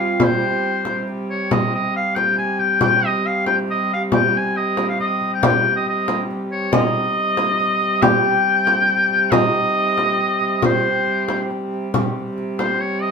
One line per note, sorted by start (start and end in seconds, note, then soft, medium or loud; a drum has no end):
0.00 1.53 C3 medium
0.00 1.52 G3 medium
0.00 0.22 F4 medium
0.00 0.25 F5 medium
0.20 1.04 C4 medium
0.20 1.09 C5 medium
0.20 frame drum medium
0.42 frame drum soft
0.85 frame drum medium
1.07 frame drum soft
1.30 1.54 C#5 medium
1.51 6.71 C3 medium
1.51 6.71 G3 medium
1.51 1.73 D#5 medium
1.51 frame drum medium
1.73 1.94 D#5 medium
1.73 frame drum soft
1.96 2.17 F5 loud
2.16 2.37 G5 loud
2.16 frame drum medium
2.38 2.60 G#5 loud
2.38 frame drum soft
2.59 2.81 G5 medium
2.59 frame drum soft
2.81 3.07 G5 loud
2.81 frame drum medium
3.03 3.28 D#5 loud
3.03 frame drum soft
3.26 3.46 F5 medium
3.46 3.56 G5 loud
3.46 frame drum medium
3.68 3.90 D#5 medium
3.68 frame drum soft
3.93 4.02 F5 loud
4.12 4.39 G5 loud
4.12 frame drum medium
4.35 4.58 G#5 medium
4.35 frame drum soft
4.57 4.88 D#5 medium
4.77 frame drum medium
4.89 4.98 F5 medium
5.00 5.30 D#5 medium
5.00 frame drum soft
5.21 frame drum soft
5.34 5.43 G5 medium
5.43 5.74 G5 loud
5.43 frame drum loud
5.65 frame drum soft
5.76 5.85 D#5 medium
5.86 6.22 D#5 medium
5.86 frame drum soft
6.08 frame drum medium
6.31 frame drum soft
6.51 6.74 C#5 medium
6.71 11.92 C3 medium
6.71 11.93 G3 medium
6.71 8.07 D#4 medium
6.71 8.04 D#5 loud
6.71 frame drum loud
6.94 frame drum soft
7.37 frame drum medium
7.60 frame drum soft
7.81 frame drum soft
8.02 9.37 G4 loud
8.02 9.33 G5 loud
8.02 frame drum medium
8.24 frame drum soft
8.67 frame drum medium
8.88 frame drum soft
9.10 frame drum soft
9.31 10.67 D#4 medium
9.31 10.62 D#5 loud
9.31 frame drum loud
9.54 frame drum soft
9.98 frame drum medium
10.19 frame drum soft
10.40 frame drum soft
10.62 11.46 C4 medium
10.62 11.47 C5 medium
10.62 frame drum medium
11.07 frame drum soft
11.29 frame drum medium
11.50 frame drum soft
11.92 13.11 C3 medium
11.92 13.11 G3 medium
11.92 frame drum medium
12.38 frame drum soft
12.59 12.82 C5 medium
12.59 frame drum medium
12.80 13.03 C#5 medium
13.02 13.11 D#5 loud